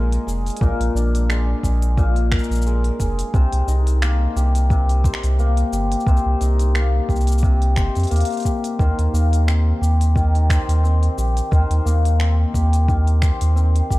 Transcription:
Already playing: sub bass A#1, hammered dulcimer A#2 G#3 D4 G#4 A#4 C5
0.12 open hi-hat
0.27 sub bass F1, hammered dulcimer G#4, cabasa
0.46 open hi-hat, cabasa
0.50 open hi-hat
0.57 open hi-hat
0.61 sub bass A#1, hammered dulcimer A#2 A#4, kick, cabasa
0.80 sub bass A#1, open hi-hat
0.94 sub bass A#1, hammered dulcimer D4, cabasa
1.15 open hi-hat, cabasa
1.29 hammered dulcimer G#3, finger snap, cabasa
1.63 sub bass A#1, hammered dulcimer G#4, kick, cabasa
1.82 open hi-hat
1.97 hammered dulcimer A#2, kick, cabasa
2.16 open hi-hat
2.32 hammered dulcimer A#4, finger snap, kick, cabasa
2.39 cabasa
2.44 cabasa
2.50 sub bass A#1, cabasa
2.55 cabasa
2.62 cabasa
2.66 hammered dulcimer G#3, cabasa
2.84 open hi-hat
3.00 sub bass F1, hammered dulcimer G#4, kick, cabasa
3.19 open hi-hat, cabasa
3.34 sub bass C2, hammered dulcimer C3 C5, kick, cabasa
3.53 sub bass C2, open hi-hat
3.68 sub bass C2, hammered dulcimer D#4, cabasa
3.87 open hi-hat, cabasa
4.02 hammered dulcimer A#3, finger snap, cabasa
4.36 sub bass C2, hammered dulcimer G4, cabasa
4.55 open hi-hat, cabasa
4.70 hammered dulcimer C3, kick, cabasa
4.89 open hi-hat
5.04 hammered dulcimer C5, kick, cabasa
5.14 finger snap
5.23 sub bass C2, open hi-hat, cabasa
5.39 hammered dulcimer A#3, cabasa
5.57 open hi-hat
5.72 sub bass G1, hammered dulcimer G4, cabasa
5.92 open hi-hat, cabasa
6.00 cabasa
6.07 sub bass C2, hammered dulcimer C3 C5, kick, cabasa
6.17 cabasa
6.26 sub bass C2
6.40 sub bass C2, hammered dulcimer D#4, open hi-hat, cabasa
6.59 open hi-hat, cabasa
6.75 hammered dulcimer A#3, finger snap, cabasa
7.09 sub bass C2, hammered dulcimer G4, kick, cabasa
7.16 cabasa
7.21 cabasa
7.27 open hi-hat, cabasa
7.32 cabasa
7.38 cabasa
7.43 hammered dulcimer C3, kick
7.62 open hi-hat
7.76 sub bass G1, hammered dulcimer C5, finger snap, kick, cabasa
7.95 sub bass F2, open hi-hat, cabasa
7.99 open hi-hat
8.03 open hi-hat
8.07 hammered dulcimer A#3, open hi-hat
8.11 sub bass D#2, open hi-hat, cabasa
8.16 open hi-hat
8.21 open hi-hat
8.25 open hi-hat
8.30 open hi-hat
8.32 open hi-hat
8.37 open hi-hat
8.40 open hi-hat
8.43 hammered dulcimer G4, kick, open hi-hat, cabasa
8.64 open hi-hat, cabasa
8.79 sub bass D#2, hammered dulcimer D#3 C5, kick, cabasa
8.99 sub bass D#2, open hi-hat
9.13 sub bass D#2, hammered dulcimer A#3, cabasa
9.33 open hi-hat, cabasa
9.47 hammered dulcimer C4, finger snap, cabasa
9.81 sub bass D#2, hammered dulcimer G4, cabasa
10.01 open hi-hat, cabasa
10.15 hammered dulcimer D#3, kick, cabasa
10.35 open hi-hat
10.49 hammered dulcimer C5, finger snap, kick, cabasa
10.68 sub bass D#2, open hi-hat, cabasa
10.84 hammered dulcimer C4, cabasa
11.03 open hi-hat
11.18 sub bass A#1, hammered dulcimer G4, cabasa
11.37 open hi-hat, cabasa
11.51 sub bass D#2, hammered dulcimer D#3 C5, kick, cabasa
11.70 sub bass D#2, open hi-hat
11.85 sub bass D#2, hammered dulcimer A#3, cabasa
12.05 open hi-hat, cabasa
12.20 hammered dulcimer C4, finger snap, cabasa
12.54 sub bass D#2, hammered dulcimer G4, kick, cabasa
12.73 open hi-hat, cabasa
12.88 hammered dulcimer D#3, kick, cabasa
13.07 open hi-hat
13.22 hammered dulcimer C5, finger snap, kick, cabasa
13.41 sub bass D#2, open hi-hat, cabasa
13.56 hammered dulcimer C4, cabasa
13.76 open hi-hat
13.90 sub bass A#1, hammered dulcimer G4, kick, cabasa

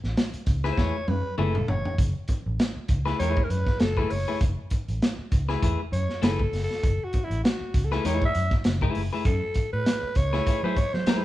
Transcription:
0.04 fingered electric bass A1, snare
0.17 snare, closed hi-hat
0.33 muted fingered electric bass stroke, closed hi-hat
0.46 fingered electric bass C#2, kick, closed hi-hat
0.64 clean electric guitar A3 E4 G#4 B4, snare
0.72 alto saxophone C5
0.78 fingered electric bass E2, clean electric guitar A3 E4 G#4 B4, alto saxophone C#5, kick, snare
1.08 fingered electric bass F#2, alto saxophone B4, high tom
1.38 fingered electric bass F#1, clean electric guitar A3 E4 G#4 B4, alto saxophone A4, mid tom
1.55 mid tom
1.68 fingered electric bass F#1, alto saxophone C#5, floor tom
1.85 floor tom
1.98 fingered electric bass F#1, kick, closed hi-hat
2.28 kick, closed hi-hat
2.46 fingered electric bass A1
2.60 snare, closed hi-hat
2.77 muted fingered electric bass stroke
2.88 fingered electric bass C#2, kick, closed hi-hat
3.06 clean electric guitar A3 E4 G#4 B4, snare
3.19 fingered electric bass E2, clean electric guitar A3 E4 G#4 B4, alto saxophone C#5, closed hi-hat
3.37 kick
3.44 alto saxophone A#4
3.50 fingered electric bass F#2, alto saxophone B4, closed hi-hat
3.66 kick, snare
3.80 fingered electric bass F#1, alto saxophone A4, snare, closed hi-hat
3.97 clean electric guitar A3 E4 G#4 B4, kick
4.10 fingered electric bass F#1, alto saxophone C#5, open hi-hat
4.28 clean electric guitar A3 E4 G#4 B4
4.41 fingered electric bass F#1, kick, closed hi-hat
4.70 kick, closed hi-hat
4.88 fingered electric bass A1, closed hi-hat
5.02 snare, closed hi-hat
5.19 muted fingered electric bass stroke
5.32 fingered electric bass C#2, kick, closed hi-hat
5.49 clean electric guitar A3 E4 G#4 B4, snare
5.62 fingered electric bass E2, clean electric guitar A3 E4 G#4 B4, kick, closed hi-hat
5.92 fingered electric bass F#2, alto saxophone C#5, closed hi-hat
6.09 snare
6.22 fingered electric bass F#1, clean electric guitar A3 E4 G#4 B4, alto saxophone A4, snare, closed hi-hat
6.39 kick
6.53 fingered electric bass F#1, snare, open hi-hat
6.64 alto saxophone A4
6.71 snare
6.83 fingered electric bass F#1, kick, closed hi-hat
7.04 alto saxophone F#4
7.13 kick, closed hi-hat
7.24 alto saxophone E4
7.30 fingered electric bass A1, closed hi-hat
7.44 alto saxophone F#4, snare, closed hi-hat
7.61 muted fingered electric bass stroke
7.74 fingered electric bass C#2, kick, closed hi-hat
7.84 alto saxophone A4
7.91 clean electric guitar A3 E4 G#4 B4, snare
8.05 fingered electric bass E2, clean electric guitar A3 E4 G#4 B4, alto saxophone C#5, closed hi-hat
8.22 alto saxophone E5, kick
8.35 fingered electric bass F#2, closed hi-hat
8.51 kick, snare
8.64 fingered electric bass F#1, snare, closed hi-hat
8.81 clean electric guitar A3 E4 G#4 B4, kick
8.95 fingered electric bass F#1, open hi-hat
9.13 clean electric guitar A3 E4 G#4 B4
9.25 fingered electric bass F#2, alto saxophone A4, kick, closed hi-hat
9.54 kick, closed hi-hat
9.73 fingered electric bass A2, alto saxophone B4
9.86 snare, closed hi-hat
10.03 muted fingered electric bass stroke
10.15 fingered electric bass C#2, alto saxophone C#5, kick, closed hi-hat
10.33 clean electric guitar A3 E4 G#4 B4, snare
10.47 clean electric guitar A3 E4 G#4 B4, kick, closed hi-hat
10.63 fingered electric bass F#3, clean electric guitar A3 E4 G#4 B4, alto saxophone C5
10.77 alto saxophone C#5, kick, closed hi-hat
10.93 fingered electric bass F#3, alto saxophone C5, snare
11.06 fingered electric bass F#3, clean electric guitar A3 E4 G#4 B4, snare, closed hi-hat

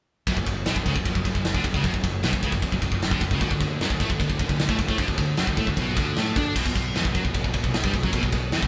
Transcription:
0.27 fingered electric bass F#1, distorted electric guitar F#2, kick, ride
0.37 fingered electric bass F#1, distorted electric guitar F#2, kick
0.46 fingered electric bass F#1, distorted electric guitar F#2, kick, ride
0.66 fingered electric bass B1, distorted electric guitar B2, snare, ride
0.76 fingered electric bass F#1, distorted electric guitar F#2, kick
0.86 fingered electric bass C#2, distorted electric guitar C#3, kick, ride
0.96 fingered electric bass F#1, distorted electric guitar F#2, kick
1.05 fingered electric bass F#1, distorted electric guitar F#2, kick, ride
1.15 fingered electric bass F#1, distorted electric guitar F#2, kick
1.25 fingered electric bass F#1, distorted electric guitar F#2, kick, ride
1.35 fingered electric bass F#1, distorted electric guitar F#2, kick
1.45 fingered electric bass F#1, distorted electric guitar F#2, snare, ride
1.54 fingered electric bass D2, distorted electric guitar D3, kick
1.64 fingered electric bass F#1, distorted electric guitar F#2, kick, ride
1.74 fingered electric bass C#2, distorted electric guitar C#3, kick
1.84 fingered electric bass F#1, distorted electric guitar F#2, kick, ride
1.94 fingered electric bass F#1, distorted electric guitar F#2, kick
2.04 fingered electric bass F#1, distorted electric guitar F#2, kick, ride
2.23 fingered electric bass B1, distorted electric guitar B2, snare, ride
2.33 fingered electric bass F#1, distorted electric guitar F#2, kick
2.43 fingered electric bass C#2, distorted electric guitar C#3, kick, ride
2.52 fingered electric bass F#1, distorted electric guitar F#2, kick
2.62 fingered electric bass F#1, distorted electric guitar F#2, kick, ride
2.72 fingered electric bass F#1, distorted electric guitar F#2, kick
2.82 fingered electric bass F#1, distorted electric guitar F#2, kick, ride
2.91 fingered electric bass F#1, distorted electric guitar F#2, kick
3.02 fingered electric bass F#1, distorted electric guitar F#2, snare, ride
3.11 fingered electric bass D2, distorted electric guitar D3, kick
3.21 fingered electric bass F#1, distorted electric guitar F#2, kick, ride
3.31 fingered electric bass C#2, distorted electric guitar C#3, kick
3.41 fingered electric bass D2, distorted electric guitar D3, kick, ride
3.51 fingered electric bass D2, distorted electric guitar D3, kick
3.60 fingered electric bass D2, distorted electric guitar D3, kick, ride
3.81 fingered electric bass F#2, distorted electric guitar F#3, snare, ride
3.90 fingered electric bass D2, distorted electric guitar D3, kick
4.00 fingered electric bass A2, distorted electric guitar A3, kick, ride
4.10 fingered electric bass D2, distorted electric guitar D3, kick
4.20 fingered electric bass D2, distorted electric guitar D3, kick, ride
4.29 fingered electric bass D2, distorted electric guitar D3, kick
4.39 fingered electric bass D2, distorted electric guitar D3, kick, ride
4.49 fingered electric bass D2, distorted electric guitar D3, kick
4.59 fingered electric bass D2, distorted electric guitar D3, snare, ride
4.69 fingered electric bass A2, distorted electric guitar A3, kick
4.78 fingered electric bass D2, distorted electric guitar D3, kick, ride
4.88 fingered electric bass A2, distorted electric guitar A3, kick
4.98 fingered electric bass D2, distorted electric guitar D3, kick, ride
5.08 fingered electric bass D2, distorted electric guitar D3, kick
5.18 fingered electric bass D2, distorted electric guitar D3, kick, ride
5.37 fingered electric bass F#2, distorted electric guitar F#3, snare, ride
5.47 fingered electric bass D2, distorted electric guitar D3, kick
5.57 fingered electric bass A2, distorted electric guitar A3, kick, ride
5.67 fingered electric bass D2, distorted electric guitar D3, kick
5.77 fingered electric bass B1, distorted electric guitar B2, kick, ride
5.97 fingered electric bass D2, distorted electric guitar D3, kick, ride
6.16 fingered electric bass A2, distorted electric guitar A3, snare, ride
6.36 fingered electric bass D3, distorted electric guitar D4, kick, ride
6.56 fingered electric bass B1, distorted electric guitar B2, kick, crash
6.65 fingered electric bass B1, distorted electric guitar B2, kick
6.75 fingered electric bass B1, distorted electric guitar B2, kick, ride
6.94 fingered electric bass E2, distorted electric guitar E3, snare, ride
7.05 fingered electric bass B1, distorted electric guitar B2, kick
7.15 fingered electric bass F#2, distorted electric guitar F#3, kick, ride
7.24 fingered electric bass B1, distorted electric guitar B2, kick
7.34 fingered electric bass B1, distorted electric guitar B2, kick, ride
7.44 fingered electric bass B1, distorted electric guitar B2, kick
7.53 fingered electric bass B1, distorted electric guitar B2, kick, ride
7.64 fingered electric bass B1, distorted electric guitar B2, kick
7.74 fingered electric bass B1, distorted electric guitar B2, snare, ride
7.84 fingered electric bass G2, distorted electric guitar G3, kick
7.93 fingered electric bass B1, distorted electric guitar B2, kick, ride
8.03 fingered electric bass F#2, distorted electric guitar F#3, kick
8.13 fingered electric bass B1, distorted electric guitar B2, kick, ride
8.23 fingered electric bass B1, distorted electric guitar B2, kick
8.32 fingered electric bass B1, distorted electric guitar B2, kick, ride
8.52 fingered electric bass E2, distorted electric guitar E3, snare, ride
8.62 fingered electric bass B1, distorted electric guitar B2, kick

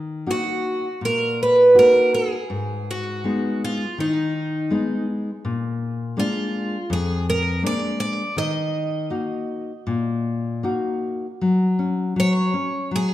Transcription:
Already playing: nylon-string guitar D#3
0.26 nylon-string guitar A#3 D#4 F#4
0.31 twelve-string acoustic guitar F#4
1.01 nylon-string guitar A#2, twelve-string acoustic guitar A#4
1.43 twelve-string acoustic guitar B4
1.75 nylon-string guitar A#3 D#4 F#4
1.79 twelve-string acoustic guitar A#4
2.14 twelve-string acoustic guitar G#4
2.50 nylon-string guitar G#2
2.91 twelve-string acoustic guitar F#4
3.24 nylon-string guitar G#3 B3 D#4
3.65 twelve-string acoustic guitar F4
3.98 nylon-string guitar D#3, twelve-string acoustic guitar D#4
4.71 nylon-string guitar G#3 B3 D#4
5.45 nylon-string guitar A#2
6.17 nylon-string guitar G#3 A#3 D4, twelve-string acoustic guitar F4
6.90 nylon-string guitar F2, twelve-string acoustic guitar G#4
7.30 twelve-string acoustic guitar A#4
7.63 nylon-string guitar G#3 A#3 D4, twelve-string acoustic guitar D5
8.00 twelve-string acoustic guitar D5
8.37 nylon-string guitar D#3, twelve-string acoustic guitar D#5
9.10 nylon-string guitar A#3 D#4 F#4
9.87 nylon-string guitar A#2
10.63 nylon-string guitar A#3 D#4 F#4
11.41 nylon-string guitar F#3
11.79 nylon-string guitar C#4
12.16 nylon-string guitar F#3, twelve-string acoustic guitar C#5
12.54 nylon-string guitar C#4
12.91 nylon-string guitar F#3
12.96 twelve-string acoustic guitar G#4

